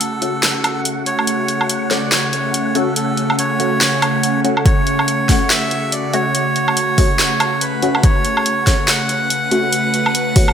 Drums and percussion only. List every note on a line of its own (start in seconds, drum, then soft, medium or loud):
0.01 closed hi-hat medium
0.22 closed hi-hat medium
0.43 snare loud
0.43 closed hi-hat medium
0.64 closed hi-hat soft
0.64 low woodblock medium
0.85 closed hi-hat medium
1.06 closed hi-hat medium
1.19 low woodblock soft
1.27 closed hi-hat medium
1.48 closed hi-hat soft
1.61 low woodblock medium
1.70 closed hi-hat medium
1.91 snare medium
1.91 closed hi-hat soft
2.12 snare loud
2.12 closed hi-hat medium
2.33 closed hi-hat soft
2.54 closed hi-hat medium
2.75 closed hi-hat medium
2.96 closed hi-hat medium
3.17 closed hi-hat soft
3.30 low woodblock medium
3.39 closed hi-hat medium
3.60 closed hi-hat soft
3.81 snare loud
3.81 closed hi-hat medium
4.02 closed hi-hat soft
4.02 low woodblock medium
4.23 closed hi-hat medium
4.45 closed hi-hat soft
4.57 low woodblock medium
4.66 kick loud
4.66 closed hi-hat medium
4.87 closed hi-hat soft
4.99 low woodblock medium
5.08 closed hi-hat medium
5.29 kick medium
5.29 snare medium
5.29 open hi-hat medium
5.50 snare loud
5.50 closed hi-hat medium
5.71 closed hi-hat soft
5.92 closed hi-hat medium
6.14 closed hi-hat soft
6.35 closed hi-hat medium
6.56 closed hi-hat soft
6.68 low woodblock medium
6.77 closed hi-hat medium
6.98 kick loud
6.98 open hi-hat medium
7.19 snare loud
7.19 closed hi-hat medium
7.40 closed hi-hat soft
7.40 low woodblock medium
7.61 closed hi-hat medium
7.82 closed hi-hat medium
7.95 low woodblock medium
8.03 kick loud
8.03 closed hi-hat medium
8.25 closed hi-hat soft
8.37 low woodblock medium
8.46 closed hi-hat medium
8.67 kick medium
8.67 snare medium
8.67 open hi-hat medium
8.88 snare loud
8.88 closed hi-hat medium
9.09 closed hi-hat medium
9.30 closed hi-hat medium
9.51 closed hi-hat medium
9.73 closed hi-hat medium
9.94 closed hi-hat medium
10.06 low woodblock medium
10.15 closed hi-hat medium
10.36 kick loud
10.36 open hi-hat medium
10.48 low woodblock medium